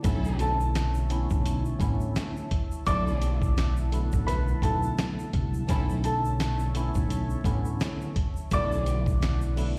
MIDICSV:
0, 0, Header, 1, 7, 480
1, 0, Start_track
1, 0, Key_signature, 2, "minor"
1, 0, Tempo, 705882
1, 31, Time_signature, 4, 2, 24, 8
1, 6657, End_track
2, 0, Start_track
2, 0, Title_t, "Upright piano"
2, 0, Program_c, 0, 0
2, 271, Note_on_c, 0, 81, 83
2, 276, Note_on_c, 0, 69, 62
2, 1099, Note_off_c, 0, 81, 0
2, 1102, Note_off_c, 0, 69, 0
2, 1948, Note_on_c, 0, 86, 114
2, 1954, Note_on_c, 0, 74, 86
2, 2537, Note_off_c, 0, 86, 0
2, 2540, Note_off_c, 0, 74, 0
2, 2901, Note_on_c, 0, 83, 91
2, 2906, Note_on_c, 0, 71, 69
2, 3121, Note_off_c, 0, 83, 0
2, 3124, Note_off_c, 0, 71, 0
2, 3146, Note_on_c, 0, 81, 85
2, 3151, Note_on_c, 0, 69, 59
2, 3364, Note_off_c, 0, 81, 0
2, 3367, Note_off_c, 0, 69, 0
2, 4109, Note_on_c, 0, 81, 78
2, 4115, Note_on_c, 0, 69, 68
2, 4938, Note_off_c, 0, 81, 0
2, 4941, Note_off_c, 0, 69, 0
2, 5803, Note_on_c, 0, 86, 116
2, 5807, Note_on_c, 0, 74, 90
2, 6385, Note_off_c, 0, 86, 0
2, 6387, Note_off_c, 0, 74, 0
2, 6657, End_track
3, 0, Start_track
3, 0, Title_t, "Analog synth pad"
3, 0, Program_c, 1, 89
3, 25, Note_on_c, 1, 64, 80
3, 25, Note_on_c, 1, 73, 75
3, 25, Note_on_c, 1, 76, 71
3, 25, Note_on_c, 1, 81, 85
3, 1929, Note_off_c, 1, 73, 0
3, 1959, Note_on_c, 1, 78, 75
3, 3841, Note_off_c, 1, 64, 0
3, 3841, Note_off_c, 1, 76, 0
3, 3856, Note_off_c, 1, 78, 0
3, 3873, Note_on_c, 1, 73, 73
3, 3873, Note_on_c, 1, 76, 68
3, 3874, Note_on_c, 1, 50, 85
3, 5773, Note_off_c, 1, 50, 0
3, 5773, Note_off_c, 1, 73, 0
3, 5773, Note_off_c, 1, 76, 0
3, 5779, Note_on_c, 1, 64, 83
3, 5779, Note_on_c, 1, 74, 77
3, 5779, Note_on_c, 1, 78, 75
3, 6657, Note_off_c, 1, 64, 0
3, 6657, Note_off_c, 1, 74, 0
3, 6657, Note_off_c, 1, 78, 0
3, 6657, Note_off_c, 1, 81, 0
3, 6657, End_track
4, 0, Start_track
4, 0, Title_t, "String section"
4, 0, Program_c, 2, 48
4, 28, Note_on_c, 2, 54, 98
4, 28, Note_on_c, 2, 64, 102
4, 28, Note_on_c, 2, 69, 109
4, 348, Note_off_c, 2, 54, 0
4, 348, Note_off_c, 2, 64, 0
4, 348, Note_off_c, 2, 69, 0
4, 1958, Note_on_c, 2, 54, 103
4, 1958, Note_on_c, 2, 62, 101
4, 1958, Note_on_c, 2, 69, 107
4, 2274, Note_off_c, 2, 54, 0
4, 2274, Note_off_c, 2, 62, 0
4, 2274, Note_off_c, 2, 69, 0
4, 3868, Note_on_c, 2, 69, 101
4, 3869, Note_on_c, 2, 54, 104
4, 3869, Note_on_c, 2, 64, 94
4, 4073, Note_off_c, 2, 69, 0
4, 4074, Note_off_c, 2, 54, 0
4, 4074, Note_off_c, 2, 64, 0
4, 5799, Note_on_c, 2, 69, 101
4, 5800, Note_on_c, 2, 54, 100
4, 5800, Note_on_c, 2, 62, 100
4, 6115, Note_off_c, 2, 54, 0
4, 6115, Note_off_c, 2, 62, 0
4, 6115, Note_off_c, 2, 69, 0
4, 6657, End_track
5, 0, Start_track
5, 0, Title_t, "Tine electric piano"
5, 0, Program_c, 3, 4
5, 21, Note_on_c, 3, 50, 98
5, 25, Note_on_c, 3, 57, 84
5, 29, Note_on_c, 3, 59, 90
5, 33, Note_on_c, 3, 61, 95
5, 37, Note_on_c, 3, 64, 119
5, 696, Note_off_c, 3, 50, 0
5, 698, Note_off_c, 3, 57, 0
5, 700, Note_off_c, 3, 59, 0
5, 701, Note_off_c, 3, 61, 0
5, 703, Note_off_c, 3, 64, 0
5, 744, Note_on_c, 3, 50, 100
5, 748, Note_on_c, 3, 57, 83
5, 752, Note_on_c, 3, 59, 89
5, 756, Note_on_c, 3, 61, 91
5, 760, Note_on_c, 3, 64, 112
5, 1194, Note_off_c, 3, 50, 0
5, 1196, Note_off_c, 3, 57, 0
5, 1198, Note_off_c, 3, 59, 0
5, 1200, Note_off_c, 3, 61, 0
5, 1202, Note_off_c, 3, 64, 0
5, 1215, Note_on_c, 3, 50, 103
5, 1219, Note_on_c, 3, 57, 84
5, 1223, Note_on_c, 3, 59, 89
5, 1227, Note_on_c, 3, 61, 85
5, 1230, Note_on_c, 3, 64, 110
5, 1669, Note_off_c, 3, 50, 0
5, 1671, Note_off_c, 3, 57, 0
5, 1673, Note_off_c, 3, 59, 0
5, 1675, Note_off_c, 3, 61, 0
5, 1677, Note_off_c, 3, 64, 0
5, 1950, Note_on_c, 3, 50, 95
5, 1953, Note_on_c, 3, 54, 93
5, 1957, Note_on_c, 3, 57, 92
5, 1961, Note_on_c, 3, 59, 86
5, 1965, Note_on_c, 3, 64, 108
5, 2620, Note_off_c, 3, 50, 0
5, 2622, Note_off_c, 3, 54, 0
5, 2624, Note_off_c, 3, 57, 0
5, 2626, Note_off_c, 3, 59, 0
5, 2628, Note_off_c, 3, 64, 0
5, 2662, Note_on_c, 3, 50, 101
5, 2666, Note_on_c, 3, 54, 89
5, 2669, Note_on_c, 3, 57, 86
5, 2673, Note_on_c, 3, 59, 92
5, 2678, Note_on_c, 3, 64, 106
5, 3113, Note_off_c, 3, 50, 0
5, 3115, Note_off_c, 3, 54, 0
5, 3117, Note_off_c, 3, 57, 0
5, 3119, Note_off_c, 3, 59, 0
5, 3121, Note_off_c, 3, 64, 0
5, 3144, Note_on_c, 3, 50, 94
5, 3148, Note_on_c, 3, 54, 87
5, 3152, Note_on_c, 3, 57, 86
5, 3156, Note_on_c, 3, 59, 91
5, 3159, Note_on_c, 3, 64, 107
5, 3817, Note_off_c, 3, 50, 0
5, 3819, Note_off_c, 3, 54, 0
5, 3821, Note_off_c, 3, 57, 0
5, 3823, Note_off_c, 3, 59, 0
5, 3825, Note_off_c, 3, 64, 0
5, 3861, Note_on_c, 3, 50, 92
5, 3865, Note_on_c, 3, 57, 87
5, 3869, Note_on_c, 3, 59, 89
5, 3873, Note_on_c, 3, 61, 96
5, 3877, Note_on_c, 3, 64, 122
5, 4536, Note_off_c, 3, 50, 0
5, 4538, Note_off_c, 3, 57, 0
5, 4539, Note_off_c, 3, 59, 0
5, 4542, Note_off_c, 3, 61, 0
5, 4543, Note_off_c, 3, 64, 0
5, 4584, Note_on_c, 3, 50, 99
5, 4588, Note_on_c, 3, 57, 86
5, 4592, Note_on_c, 3, 59, 87
5, 4596, Note_on_c, 3, 61, 90
5, 4600, Note_on_c, 3, 64, 113
5, 5034, Note_off_c, 3, 50, 0
5, 5036, Note_off_c, 3, 57, 0
5, 5038, Note_off_c, 3, 59, 0
5, 5040, Note_off_c, 3, 61, 0
5, 5042, Note_off_c, 3, 64, 0
5, 5056, Note_on_c, 3, 50, 106
5, 5060, Note_on_c, 3, 57, 82
5, 5064, Note_on_c, 3, 59, 88
5, 5068, Note_on_c, 3, 61, 91
5, 5071, Note_on_c, 3, 64, 110
5, 5510, Note_off_c, 3, 50, 0
5, 5512, Note_off_c, 3, 57, 0
5, 5514, Note_off_c, 3, 59, 0
5, 5516, Note_off_c, 3, 61, 0
5, 5518, Note_off_c, 3, 64, 0
5, 5790, Note_on_c, 3, 50, 96
5, 5794, Note_on_c, 3, 54, 95
5, 5798, Note_on_c, 3, 57, 94
5, 5802, Note_on_c, 3, 59, 89
5, 5806, Note_on_c, 3, 64, 108
5, 6460, Note_off_c, 3, 50, 0
5, 6462, Note_off_c, 3, 54, 0
5, 6464, Note_off_c, 3, 57, 0
5, 6466, Note_off_c, 3, 59, 0
5, 6468, Note_off_c, 3, 64, 0
5, 6501, Note_on_c, 3, 50, 103
5, 6506, Note_on_c, 3, 54, 91
5, 6510, Note_on_c, 3, 57, 89
5, 6513, Note_on_c, 3, 59, 90
5, 6517, Note_on_c, 3, 64, 106
5, 6657, Note_off_c, 3, 50, 0
5, 6657, Note_off_c, 3, 54, 0
5, 6657, Note_off_c, 3, 57, 0
5, 6657, Note_off_c, 3, 59, 0
5, 6657, Note_off_c, 3, 64, 0
5, 6657, End_track
6, 0, Start_track
6, 0, Title_t, "Upright bass"
6, 0, Program_c, 4, 32
6, 33, Note_on_c, 4, 35, 104
6, 860, Note_off_c, 4, 35, 0
6, 891, Note_on_c, 4, 35, 94
6, 1151, Note_off_c, 4, 35, 0
6, 1225, Note_on_c, 4, 33, 98
6, 1409, Note_off_c, 4, 33, 0
6, 1953, Note_on_c, 4, 35, 111
6, 2780, Note_off_c, 4, 35, 0
6, 2811, Note_on_c, 4, 35, 97
6, 3070, Note_off_c, 4, 35, 0
6, 3145, Note_on_c, 4, 35, 96
6, 3329, Note_off_c, 4, 35, 0
6, 3630, Note_on_c, 4, 36, 94
6, 3813, Note_off_c, 4, 36, 0
6, 3872, Note_on_c, 4, 35, 106
6, 4700, Note_off_c, 4, 35, 0
6, 4731, Note_on_c, 4, 35, 93
6, 4990, Note_off_c, 4, 35, 0
6, 5065, Note_on_c, 4, 33, 100
6, 5249, Note_off_c, 4, 33, 0
6, 5793, Note_on_c, 4, 35, 104
6, 6620, Note_off_c, 4, 35, 0
6, 6657, End_track
7, 0, Start_track
7, 0, Title_t, "Drums"
7, 28, Note_on_c, 9, 42, 98
7, 29, Note_on_c, 9, 82, 76
7, 30, Note_on_c, 9, 36, 122
7, 96, Note_off_c, 9, 42, 0
7, 97, Note_off_c, 9, 82, 0
7, 98, Note_off_c, 9, 36, 0
7, 169, Note_on_c, 9, 82, 55
7, 237, Note_off_c, 9, 82, 0
7, 266, Note_on_c, 9, 42, 77
7, 270, Note_on_c, 9, 82, 57
7, 334, Note_off_c, 9, 42, 0
7, 338, Note_off_c, 9, 82, 0
7, 411, Note_on_c, 9, 82, 55
7, 479, Note_off_c, 9, 82, 0
7, 512, Note_on_c, 9, 42, 98
7, 512, Note_on_c, 9, 82, 67
7, 513, Note_on_c, 9, 38, 123
7, 519, Note_on_c, 9, 40, 95
7, 580, Note_off_c, 9, 42, 0
7, 580, Note_off_c, 9, 82, 0
7, 581, Note_off_c, 9, 38, 0
7, 587, Note_off_c, 9, 40, 0
7, 642, Note_on_c, 9, 82, 53
7, 710, Note_off_c, 9, 82, 0
7, 748, Note_on_c, 9, 42, 82
7, 752, Note_on_c, 9, 82, 50
7, 816, Note_off_c, 9, 42, 0
7, 820, Note_off_c, 9, 82, 0
7, 884, Note_on_c, 9, 82, 62
7, 888, Note_on_c, 9, 36, 88
7, 952, Note_off_c, 9, 82, 0
7, 956, Note_off_c, 9, 36, 0
7, 990, Note_on_c, 9, 42, 84
7, 993, Note_on_c, 9, 82, 66
7, 1058, Note_off_c, 9, 42, 0
7, 1061, Note_off_c, 9, 82, 0
7, 1124, Note_on_c, 9, 82, 46
7, 1192, Note_off_c, 9, 82, 0
7, 1222, Note_on_c, 9, 36, 98
7, 1228, Note_on_c, 9, 42, 74
7, 1229, Note_on_c, 9, 82, 56
7, 1290, Note_off_c, 9, 36, 0
7, 1296, Note_off_c, 9, 42, 0
7, 1297, Note_off_c, 9, 82, 0
7, 1363, Note_on_c, 9, 82, 56
7, 1431, Note_off_c, 9, 82, 0
7, 1467, Note_on_c, 9, 82, 69
7, 1470, Note_on_c, 9, 38, 123
7, 1470, Note_on_c, 9, 42, 102
7, 1475, Note_on_c, 9, 40, 97
7, 1535, Note_off_c, 9, 82, 0
7, 1538, Note_off_c, 9, 38, 0
7, 1538, Note_off_c, 9, 42, 0
7, 1543, Note_off_c, 9, 40, 0
7, 1610, Note_on_c, 9, 82, 48
7, 1678, Note_off_c, 9, 82, 0
7, 1707, Note_on_c, 9, 42, 81
7, 1708, Note_on_c, 9, 36, 93
7, 1775, Note_off_c, 9, 42, 0
7, 1776, Note_off_c, 9, 36, 0
7, 1848, Note_on_c, 9, 82, 52
7, 1916, Note_off_c, 9, 82, 0
7, 1948, Note_on_c, 9, 42, 95
7, 1949, Note_on_c, 9, 82, 75
7, 1950, Note_on_c, 9, 36, 119
7, 2016, Note_off_c, 9, 42, 0
7, 2017, Note_off_c, 9, 82, 0
7, 2018, Note_off_c, 9, 36, 0
7, 2089, Note_on_c, 9, 82, 55
7, 2157, Note_off_c, 9, 82, 0
7, 2187, Note_on_c, 9, 42, 76
7, 2189, Note_on_c, 9, 82, 60
7, 2255, Note_off_c, 9, 42, 0
7, 2257, Note_off_c, 9, 82, 0
7, 2323, Note_on_c, 9, 36, 107
7, 2330, Note_on_c, 9, 82, 54
7, 2391, Note_off_c, 9, 36, 0
7, 2398, Note_off_c, 9, 82, 0
7, 2431, Note_on_c, 9, 82, 70
7, 2432, Note_on_c, 9, 42, 102
7, 2434, Note_on_c, 9, 38, 119
7, 2439, Note_on_c, 9, 40, 97
7, 2499, Note_off_c, 9, 82, 0
7, 2500, Note_off_c, 9, 42, 0
7, 2502, Note_off_c, 9, 38, 0
7, 2507, Note_off_c, 9, 40, 0
7, 2562, Note_on_c, 9, 82, 53
7, 2630, Note_off_c, 9, 82, 0
7, 2668, Note_on_c, 9, 42, 81
7, 2673, Note_on_c, 9, 82, 52
7, 2736, Note_off_c, 9, 42, 0
7, 2741, Note_off_c, 9, 82, 0
7, 2804, Note_on_c, 9, 82, 63
7, 2808, Note_on_c, 9, 36, 92
7, 2872, Note_off_c, 9, 82, 0
7, 2876, Note_off_c, 9, 36, 0
7, 2910, Note_on_c, 9, 42, 88
7, 2912, Note_on_c, 9, 38, 40
7, 2915, Note_on_c, 9, 82, 71
7, 2978, Note_off_c, 9, 42, 0
7, 2980, Note_off_c, 9, 38, 0
7, 2983, Note_off_c, 9, 82, 0
7, 3044, Note_on_c, 9, 82, 48
7, 3112, Note_off_c, 9, 82, 0
7, 3142, Note_on_c, 9, 36, 97
7, 3148, Note_on_c, 9, 82, 58
7, 3150, Note_on_c, 9, 42, 75
7, 3210, Note_off_c, 9, 36, 0
7, 3216, Note_off_c, 9, 82, 0
7, 3218, Note_off_c, 9, 42, 0
7, 3283, Note_on_c, 9, 82, 57
7, 3351, Note_off_c, 9, 82, 0
7, 3387, Note_on_c, 9, 82, 70
7, 3390, Note_on_c, 9, 38, 121
7, 3390, Note_on_c, 9, 42, 101
7, 3395, Note_on_c, 9, 40, 96
7, 3455, Note_off_c, 9, 82, 0
7, 3458, Note_off_c, 9, 38, 0
7, 3458, Note_off_c, 9, 42, 0
7, 3463, Note_off_c, 9, 40, 0
7, 3530, Note_on_c, 9, 82, 49
7, 3598, Note_off_c, 9, 82, 0
7, 3627, Note_on_c, 9, 42, 84
7, 3628, Note_on_c, 9, 36, 99
7, 3695, Note_off_c, 9, 42, 0
7, 3696, Note_off_c, 9, 36, 0
7, 3767, Note_on_c, 9, 82, 53
7, 3835, Note_off_c, 9, 82, 0
7, 3867, Note_on_c, 9, 42, 97
7, 3869, Note_on_c, 9, 36, 125
7, 3869, Note_on_c, 9, 82, 75
7, 3935, Note_off_c, 9, 42, 0
7, 3937, Note_off_c, 9, 36, 0
7, 3937, Note_off_c, 9, 82, 0
7, 4009, Note_on_c, 9, 82, 56
7, 4077, Note_off_c, 9, 82, 0
7, 4106, Note_on_c, 9, 42, 78
7, 4109, Note_on_c, 9, 82, 58
7, 4174, Note_off_c, 9, 42, 0
7, 4177, Note_off_c, 9, 82, 0
7, 4250, Note_on_c, 9, 82, 56
7, 4318, Note_off_c, 9, 82, 0
7, 4351, Note_on_c, 9, 82, 68
7, 4352, Note_on_c, 9, 42, 98
7, 4353, Note_on_c, 9, 38, 119
7, 4358, Note_on_c, 9, 40, 98
7, 4419, Note_off_c, 9, 82, 0
7, 4420, Note_off_c, 9, 42, 0
7, 4421, Note_off_c, 9, 38, 0
7, 4426, Note_off_c, 9, 40, 0
7, 4482, Note_on_c, 9, 82, 54
7, 4550, Note_off_c, 9, 82, 0
7, 4588, Note_on_c, 9, 42, 84
7, 4593, Note_on_c, 9, 82, 50
7, 4656, Note_off_c, 9, 42, 0
7, 4661, Note_off_c, 9, 82, 0
7, 4725, Note_on_c, 9, 82, 62
7, 4728, Note_on_c, 9, 36, 89
7, 4793, Note_off_c, 9, 82, 0
7, 4796, Note_off_c, 9, 36, 0
7, 4831, Note_on_c, 9, 42, 86
7, 4835, Note_on_c, 9, 82, 69
7, 4899, Note_off_c, 9, 42, 0
7, 4903, Note_off_c, 9, 82, 0
7, 4964, Note_on_c, 9, 82, 48
7, 5032, Note_off_c, 9, 82, 0
7, 5062, Note_on_c, 9, 36, 102
7, 5067, Note_on_c, 9, 82, 56
7, 5069, Note_on_c, 9, 42, 75
7, 5130, Note_off_c, 9, 36, 0
7, 5135, Note_off_c, 9, 82, 0
7, 5137, Note_off_c, 9, 42, 0
7, 5203, Note_on_c, 9, 82, 57
7, 5271, Note_off_c, 9, 82, 0
7, 5306, Note_on_c, 9, 82, 68
7, 5310, Note_on_c, 9, 42, 99
7, 5311, Note_on_c, 9, 38, 117
7, 5316, Note_on_c, 9, 40, 98
7, 5374, Note_off_c, 9, 82, 0
7, 5378, Note_off_c, 9, 42, 0
7, 5379, Note_off_c, 9, 38, 0
7, 5384, Note_off_c, 9, 40, 0
7, 5449, Note_on_c, 9, 82, 49
7, 5517, Note_off_c, 9, 82, 0
7, 5548, Note_on_c, 9, 36, 98
7, 5548, Note_on_c, 9, 42, 83
7, 5616, Note_off_c, 9, 36, 0
7, 5616, Note_off_c, 9, 42, 0
7, 5688, Note_on_c, 9, 82, 53
7, 5756, Note_off_c, 9, 82, 0
7, 5789, Note_on_c, 9, 42, 99
7, 5789, Note_on_c, 9, 82, 75
7, 5790, Note_on_c, 9, 36, 119
7, 5857, Note_off_c, 9, 42, 0
7, 5857, Note_off_c, 9, 82, 0
7, 5858, Note_off_c, 9, 36, 0
7, 5929, Note_on_c, 9, 82, 56
7, 5997, Note_off_c, 9, 82, 0
7, 6027, Note_on_c, 9, 42, 75
7, 6029, Note_on_c, 9, 82, 59
7, 6095, Note_off_c, 9, 42, 0
7, 6097, Note_off_c, 9, 82, 0
7, 6163, Note_on_c, 9, 36, 103
7, 6170, Note_on_c, 9, 82, 54
7, 6231, Note_off_c, 9, 36, 0
7, 6238, Note_off_c, 9, 82, 0
7, 6271, Note_on_c, 9, 82, 68
7, 6273, Note_on_c, 9, 42, 101
7, 6274, Note_on_c, 9, 38, 120
7, 6280, Note_on_c, 9, 40, 97
7, 6339, Note_off_c, 9, 82, 0
7, 6341, Note_off_c, 9, 42, 0
7, 6342, Note_off_c, 9, 38, 0
7, 6348, Note_off_c, 9, 40, 0
7, 6402, Note_on_c, 9, 82, 54
7, 6470, Note_off_c, 9, 82, 0
7, 6510, Note_on_c, 9, 46, 62
7, 6512, Note_on_c, 9, 82, 51
7, 6578, Note_off_c, 9, 46, 0
7, 6580, Note_off_c, 9, 82, 0
7, 6657, End_track
0, 0, End_of_file